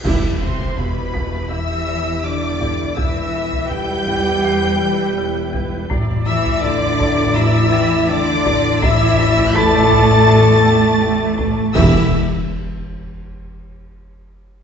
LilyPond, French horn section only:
\new Staff \with { instrumentName = "French horn section" } { \time 4/4 \key e \minor \tempo 4 = 82 r8 c'8 b4 e'4 d'4 | e'4 g'2. | r8 e'8 d'4 e'4 d'4 | e'4 a'2. |
e'8 r2. r8 | }